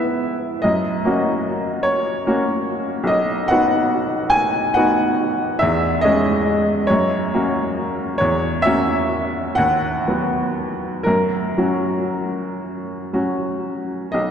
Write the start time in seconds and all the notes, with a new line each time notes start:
Already playing: B3 E4 B4 E5
0.62 F#2 D#5
1.05 A#3 C#4 F#4
1.83 C#5
2.27 A#3 C#4 F#4
3.03 B1 D#5
3.48 B3 D#4 F#4 F#5
4.30 G#5
4.74 B3 D#4 F#4 F#5
5.59 E2 E5
6.01 G#3 C#4 G#4 D#5
6.87 F#2 C#5
7.34 A#3 C#4 F#4
8.18 E2 C#5
8.62 A#3 C#4 F#4 E5
9.55 D#2 F#5
10.08 F#3 B3 F#4
11.03 F#2 A#4
11.57 F#3 C#4 F#4
13.13 F#3 C#4 F#4
14.12 B1 D#5